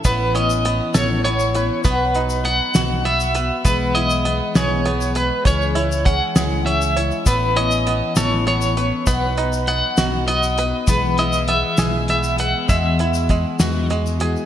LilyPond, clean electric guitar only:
\new Staff \with { instrumentName = "Clean electric guitar" } { \time 6/8 \key e \major \tempo 4. = 66 b'8 dis''4 cis''8 cis''4 | b'4 fis''4 e''4 | b'8 dis''4 cis''4 b'8 | cis''4 fis''4 e''4 |
b'8 dis''4 cis''8 cis''4 | b'4 fis''4 dis''4 | b'8 dis''8 e''4 e''8 fis''8 | e''2 r4 | }